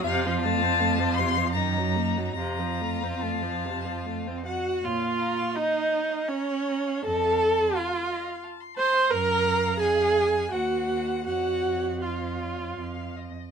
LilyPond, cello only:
\new Staff \with { instrumentName = "Cello" } { \clef bass \time 3/4 \key bes \minor \tempo 4 = 81 f,2 ges,4 | f,2~ f,8 r8 | bes,4 r2 | f,4 r2 |
ges,4 f,4 ees,4 | f,2 f,8 r8 | }